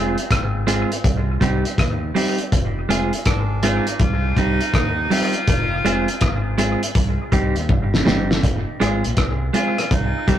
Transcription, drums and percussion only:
0.18 closed hi-hat
0.31 kick, cross-stick, closed hi-hat
0.68 closed hi-hat
0.92 closed hi-hat
1.04 kick, closed hi-hat
1.41 kick, closed hi-hat
1.65 closed hi-hat
1.78 kick, cross-stick, closed hi-hat
2.16 open hi-hat
2.38 closed hi-hat
2.52 kick, closed hi-hat
2.90 closed hi-hat
3.13 closed hi-hat
3.25 kick, cross-stick, closed hi-hat
3.63 closed hi-hat
3.87 closed hi-hat
3.99 kick, closed hi-hat
4.37 kick, closed hi-hat
4.61 closed hi-hat
4.74 kick, cross-stick, closed hi-hat
5.11 open hi-hat
5.33 closed hi-hat
5.48 kick, closed hi-hat
5.86 closed hi-hat
6.08 closed hi-hat
6.21 kick, cross-stick, closed hi-hat
6.58 closed hi-hat
6.83 closed hi-hat
6.95 kick, closed hi-hat
7.32 kick, closed hi-hat
7.56 closed hi-hat
7.69 kick
7.94 snare
8.07 snare
8.31 snare
8.43 kick, closed hi-hat
8.81 cross-stick, closed hi-hat
9.04 closed hi-hat
9.17 kick, cross-stick, closed hi-hat
9.54 closed hi-hat
9.78 cross-stick, closed hi-hat
9.91 kick, closed hi-hat
10.28 kick, closed hi-hat

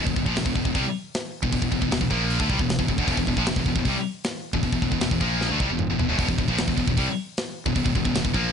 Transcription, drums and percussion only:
0.07 kick
0.16 kick
0.26 kick
0.36 snare, open hi-hat
0.46 kick
0.56 kick
0.65 kick
0.75 kick, open hi-hat
1.14 snare, open hi-hat
1.43 kick
1.53 kick, open hi-hat
1.62 kick
1.72 kick
1.82 kick
1.91 snare, open hi-hat
2.01 kick
2.11 kick
2.30 open hi-hat
2.40 kick
2.50 kick
2.59 kick
2.69 snare, open hi-hat
2.79 kick
2.88 kick
2.98 kick
3.08 kick, open hi-hat
3.17 kick
3.27 kick
3.37 kick
3.46 snare, open hi-hat
3.56 kick
3.66 kick
3.76 kick
3.85 kick, open hi-hat
4.24 snare, open hi-hat
4.53 kick
4.63 kick, open hi-hat
4.73 kick
4.82 kick
4.92 kick
5.01 snare, open hi-hat
5.11 kick
5.21 kick
5.41 snare
5.60 kick
5.79 mid tom
5.99 floor tom
6.19 kick, open hi-hat
6.29 kick
6.38 kick
6.48 kick
6.58 snare, open hi-hat
6.68 kick
6.78 kick
6.88 kick
6.98 kick, open hi-hat
7.37 snare, open hi-hat
7.66 kick
7.76 kick, open hi-hat
7.86 kick
7.95 kick
8.05 kick
8.15 snare, open hi-hat
8.25 kick
8.34 kick

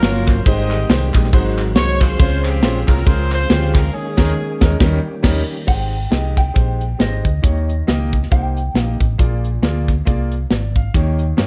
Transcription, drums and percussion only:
0.03 snare, ride
0.27 kick, clap, ride
0.46 kick, ride
0.71 clap, ride
0.90 snare, ride
1.14 kick, clap, ride
1.24 snare
1.33 kick, ride
1.58 clap, ride
1.76 snare, ride
2.01 kick, clap, ride
2.20 kick, ride
2.44 clap, ride
2.63 snare, ride
2.88 kick, clap, ride
2.97 snare
3.06 kick, ride
3.31 clap, ride
3.50 snare, ride
3.74 kick, clap, ride
4.18 kick, snare, crash
4.61 kick, snare
4.80 kick, snare
5.24 kick, snare, crash
5.68 kick, crash
5.93 closed hi-hat
6.12 snare, closed hi-hat
6.37 kick, snare, closed hi-hat
6.56 kick, closed hi-hat
6.81 closed hi-hat
7.00 snare, closed hi-hat
7.25 kick, closed hi-hat
7.44 kick, closed hi-hat
7.69 closed hi-hat
7.88 snare, closed hi-hat
8.13 kick, closed hi-hat
8.23 snare
8.31 kick, closed hi-hat
8.57 closed hi-hat
8.75 snare, closed hi-hat
9.00 kick, closed hi-hat
9.19 kick, closed hi-hat
9.45 closed hi-hat
9.63 snare, closed hi-hat
9.88 kick, snare, closed hi-hat
10.07 kick, closed hi-hat
10.32 closed hi-hat
10.50 snare, closed hi-hat
10.75 kick, closed hi-hat
10.94 kick, closed hi-hat
11.19 closed hi-hat
11.38 snare, closed hi-hat

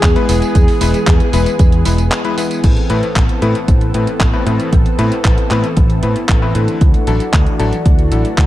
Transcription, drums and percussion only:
0.03 kick, clap, closed hi-hat, tambourine
0.16 closed hi-hat
0.29 open hi-hat, tambourine
0.42 closed hi-hat, tambourine
0.55 kick, closed hi-hat, tambourine
0.68 open hi-hat
0.81 open hi-hat, tambourine
0.94 closed hi-hat, tambourine
1.07 kick, clap, closed hi-hat, tambourine
1.20 closed hi-hat
1.33 open hi-hat, tambourine
1.46 closed hi-hat, tambourine
1.59 kick, closed hi-hat, tambourine
1.72 closed hi-hat
1.85 open hi-hat, tambourine
1.98 closed hi-hat, tambourine
2.12 clap, closed hi-hat, tambourine
2.25 closed hi-hat
2.38 open hi-hat, tambourine
2.51 closed hi-hat, tambourine
2.64 kick, closed hi-hat, crash
2.77 closed hi-hat
2.90 closed hi-hat
3.03 closed hi-hat
3.16 kick, clap, closed hi-hat
3.29 closed hi-hat
3.42 closed hi-hat
3.55 closed hi-hat
3.68 kick, closed hi-hat
3.81 closed hi-hat
3.94 closed hi-hat
4.07 closed hi-hat
4.20 kick, clap, closed hi-hat
4.47 closed hi-hat
4.60 closed hi-hat
4.73 kick, closed hi-hat
4.86 closed hi-hat
4.99 closed hi-hat
5.12 closed hi-hat
5.25 kick, clap, closed hi-hat
5.38 closed hi-hat
5.51 clap, closed hi-hat
5.64 closed hi-hat
5.77 kick, closed hi-hat
5.90 closed hi-hat
6.03 closed hi-hat
6.16 closed hi-hat
6.29 kick, clap, closed hi-hat
6.55 closed hi-hat
6.68 closed hi-hat
6.81 kick, closed hi-hat
6.94 closed hi-hat
7.07 closed hi-hat
7.20 closed hi-hat
7.33 kick, clap, closed hi-hat
7.47 closed hi-hat
7.60 closed hi-hat
7.73 closed hi-hat
7.86 kick, closed hi-hat
7.99 closed hi-hat
8.12 closed hi-hat
8.25 closed hi-hat
8.38 kick, clap, closed hi-hat

